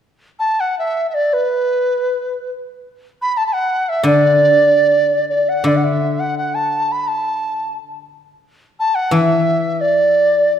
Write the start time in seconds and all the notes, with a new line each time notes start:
0.39 A5
0.60 F#5
0.79 E5
1.10 E5
1.14 D5
1.33 B4
3.22 B5
3.37 A5
3.47 A5
3.53 F#5
3.89 E5
4.03 D3 D5
5.30 D5
5.49 F#5
5.64 D3 D5
5.76 F#5
5.84 E5
6.19 F#5
6.38 F#5
6.55 A5
6.92 B5
7.08 A5
8.79 A5
8.95 F#5
9.11 E3 E5
9.81 D5